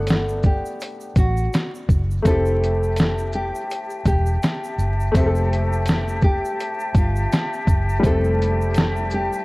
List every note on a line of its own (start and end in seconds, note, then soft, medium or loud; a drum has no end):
0.00 0.61 G1 loud
0.00 2.19 A3 medium
0.00 2.20 B3 medium
0.00 2.22 D4 medium
0.00 0.41 A4 medium
0.00 2.23 F#5 medium
0.07 snare loud
0.07 closed hi-hat medium
0.07 shaker medium
0.29 shaker soft
0.43 1.13 G4 medium
0.43 kick medium
0.43 shaker soft
0.66 shaker medium
0.80 closed hi-hat medium
0.80 shaker medium
1.01 shaker soft
1.16 1.47 A1 medium
1.16 1.71 F#4 medium
1.16 kick medium
1.16 closed hi-hat soft
1.16 shaker soft
1.37 shaker medium
1.53 snare loud
1.53 closed hi-hat medium
1.53 shaker medium
1.75 shaker soft
1.89 2.19 F#1 medium
1.89 kick medium
1.89 shaker medium
2.11 shaker medium
2.22 3.50 F1 loud
2.22 5.09 A3 medium
2.22 5.10 C4 medium
2.22 9.45 G4 medium
2.22 9.45 E5 medium
2.22 9.45 G5 medium
2.22 9.45 A5 medium
2.22 kick loud
2.22 closed hi-hat medium
2.22 shaker medium
2.27 5.12 E4 medium
2.27 5.13 G4 medium
2.27 3.30 A4 medium
2.46 shaker soft
2.64 closed hi-hat soft
2.64 shaker soft
2.83 shaker medium
2.96 snare loud
2.96 closed hi-hat medium
2.96 shaker medium
3.18 shaker soft
3.33 4.03 G4 medium
3.33 shaker soft
3.55 shaker medium
3.70 closed hi-hat medium
3.70 shaker soft
3.90 shaker soft
4.05 4.36 E1 medium
4.05 5.16 G4 medium
4.05 kick medium
4.05 closed hi-hat soft
4.05 shaker soft
4.26 shaker soft
4.43 snare loud
4.43 closed hi-hat medium
4.43 shaker medium
4.64 shaker soft
4.78 5.09 F#1 medium
4.78 shaker soft
4.78 shaker medium
5.00 shaker soft
5.12 6.39 F1 loud
5.12 7.98 A3 medium
5.12 7.99 C4 medium
5.12 kick loud
5.12 closed hi-hat medium
5.12 shaker medium
5.16 5.24 G4 medium
5.16 6.20 A4 loud
5.16 8.01 E5 medium
5.26 8.05 A4 medium
5.35 shaker soft
5.53 closed hi-hat soft
5.53 shaker soft
5.73 shaker soft
5.86 snare loud
5.86 closed hi-hat medium
5.86 shaker medium
6.08 shaker soft
6.22 6.92 G4 medium
6.22 kick medium
6.22 shaker soft
6.45 shaker medium
6.60 closed hi-hat medium
6.60 shaker soft
6.80 shaker soft
6.95 7.25 G1 loud
6.95 kick medium
6.95 closed hi-hat soft
6.95 shaker soft
6.97 7.50 F4 medium
6.97 shaker medium
7.16 shaker soft
7.32 snare loud
7.32 closed hi-hat medium
7.32 shaker medium
7.53 shaker soft
7.67 7.98 F#1 medium
7.67 kick medium
7.67 shaker medium
7.89 shaker soft
8.00 8.09 G3 medium
8.00 9.45 C4 medium
8.00 kick loud
8.04 9.29 F1 loud
8.04 9.45 A3 medium
8.04 9.45 E4 medium
8.04 9.45 G4 medium
8.04 9.09 A4 medium
8.04 closed hi-hat medium
8.04 shaker medium
8.24 shaker soft
8.42 closed hi-hat soft
8.42 shaker soft
8.61 shaker soft
8.74 snare loud
8.74 closed hi-hat medium
8.74 shaker medium
8.96 shaker soft
9.10 9.45 G4 medium
9.10 shaker medium
9.33 shaker medium